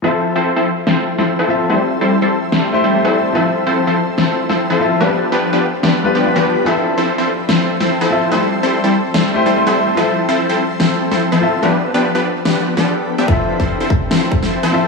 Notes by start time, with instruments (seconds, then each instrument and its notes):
0.02 grand piano F3 F4 A4, supersaw synth F3 C4 E4 A4 C5, ambient pad F3 C4 A4 C5 E5
0.06 grand piano E5
0.36 supersaw synth F3 C4 E4 A4 C5
0.56 supersaw synth F3 C4 E4 A4 C5
0.87 supersaw synth F3 C4 E4 A4 C5, snare
1.18 supersaw synth F3 C4 E4 A4 C5, snare
1.39 supersaw synth F3 C4 E4 A4 C5
1.48 grand piano F3 F4 A4 E5
1.69 supersaw synth G3 C4 E4 A4 C5, ambient pad G3, grand piano A3 E4 G4 C5
2.01 supersaw synth G3 C4 E4 A4 C5
2.22 supersaw synth G3 C4 E4 A4 C5
2.52 supersaw synth G3 C4 E4 A4 C5, snare
2.72 grand piano A3 E4 G4 C5
2.84 supersaw synth G3 C4 E4 A4 C5
2.93 grand piano A3 E4 G4 C5
3.05 supersaw synth G3 C4 E4 A4 C5
3.33 grand piano F3 F4 A4 E5, ambient pad F3, supersaw synth F3 C4 E4 A4 C5
3.67 supersaw synth F3 C4 E4 A4 C5
3.87 supersaw synth F3 C4 E4 A4 C5
4.18 supersaw synth F3 C4 E4 A4 C5, snare
4.49 supersaw synth F3 C4 E4 A4 C5, snare
4.70 supersaw synth F3 C4 E4 A4 C5
4.79 grand piano F3 F4 A4 E5
5.00 supersaw synth F3 B3 D4 G4 B4, grand piano G3 D4 F4 B4, ambient pad B3 D4 G4 B4
5.32 supersaw synth F3 B3 D4 G4 B4
5.53 supersaw synth F3 B3 D4 G4 B4
5.83 supersaw synth F3 B3 D4 G4 B4, snare
6.03 grand piano G3 D4 F4 B4
6.15 supersaw synth F3 B3 D4 G4 B4
6.24 grand piano G3 D4 F4 B4
6.36 supersaw synth F3 B3 D4 G4 B4
6.64 grand piano F3 F4 A4 E5, ambient pad F3 C4 A4 C5 E5, supersaw synth F3 C4 E4 A4 C5
6.98 supersaw synth F3 C4 E4 A4 C5
7.18 supersaw synth F3 C4 E4 A4 C5
7.49 supersaw synth F3 C4 E4 A4 C5, snare
7.80 supersaw synth F3 C4 E4 A4 C5, snare
8.01 supersaw synth F3 C4 E4 A4 C5
8.10 grand piano F3 F4 A4 E5
8.31 ambient pad G3 C5, supersaw synth G3 C4 E4 A4 C5, grand piano A3 E4 G4 C5
8.63 supersaw synth G3 C4 E4 A4 C5
8.84 supersaw synth G3 C4 E4 A4 C5
9.14 supersaw synth G3 C4 E4 A4 C5, snare
9.34 grand piano A3 E4 G4 C5
9.46 supersaw synth G3 C4 E4 A4 C5
9.55 grand piano A3 E4 G4 C5
9.67 supersaw synth G3 C4 E4 A4 C5
9.95 grand piano F3 F4 A4, ambient pad F3 E5, supersaw synth F3 C4 E4 A4 C5
9.99 grand piano E5
10.29 supersaw synth F3 C4 E4 A4 C5
10.49 supersaw synth F3 C4 E4 A4 C5
10.80 supersaw synth F3 C4 E4 A4 C5, snare
11.11 supersaw synth F3 C4 E4 A4 C5, snare
11.32 supersaw synth F3 C4 E4 A4 C5
11.41 grand piano F3 F4 A4 E5
11.62 supersaw synth F3 B3 D4 G4 B4, grand piano G3 D4 F4 B4, ambient pad B3 D4 G4 B4
11.94 supersaw synth F3 B3 D4 G4 B4
12.15 supersaw synth F3 B3 D4 G4 B4
12.45 supersaw synth F3 B3 D4 G4 B4, snare
12.77 supersaw synth F3 B3 D4 G4 A4, snare
13.18 supersaw synth F3 B3 D4 G4 E5
13.26 grand piano F3 F4 A4, supersaw synth F3 E4, ambient pad C4 A4 C5 E5, kick
13.30 grand piano E5
13.60 supersaw synth F3 C4 E4 A4 C5, kick
13.80 supersaw synth F3 C4 E4 A4 C5
13.90 kick
14.11 supersaw synth F3 C4 E4 A4 C5, snare
14.32 kick
14.42 supersaw synth F3 C4 E4 A4 C5, snare
14.63 supersaw synth F3 C4 E4 A4 C5
14.72 grand piano F3 F4 A4 E5